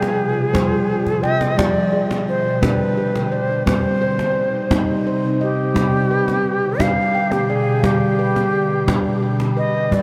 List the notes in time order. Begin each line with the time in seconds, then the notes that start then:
Already playing: C3 F3 G3 F4 G#4 G5
0.02 cajon slap
0.54 G3 C5, cajon bass, cajon slap
0.89 cajon slap
1.07 cajon bass
1.22 D#5 G5, cajon slap
1.41 cajon slap
1.57 B2 D3 G3 G4 D5 G5, cajon bass, cajon slap
1.93 G#4, cajon slap
2.11 cajon slap
2.29 C5
2.62 G3 D4 B4, cajon bass, cajon slap
2.97 G4, cajon slap
3.15 cajon slap
3.32 C5 D5
3.66 C3 G3 C4 D#4 C5, cajon bass, cajon slap
4.02 C5, cajon slap
4.19 cajon slap
4.71 G3 D#4, cajon bass, cajon slap
5.06 C5, cajon slap
5.41 G4 D#5
5.75 B2 D3 G3 G4 G5, cajon bass, cajon slap
6.11 B4, cajon slap
6.28 cajon slap
6.79 G3 D4 F5, cajon bass, cajon slap
7.14 G5, cajon slap
7.32 G4, cajon slap
7.50 G#4 D5
7.83 G3 G4, cajon bass, cajon slap
8.19 B4, cajon slap
8.36 cajon slap
8.88 G3 D4, cajon bass, cajon slap
9.06 cajon slap
9.22 G4
9.40 cajon slap
9.57 B4 D#5
9.75 cajon slap
9.92 B2 D3 G3 D5 G5, cajon bass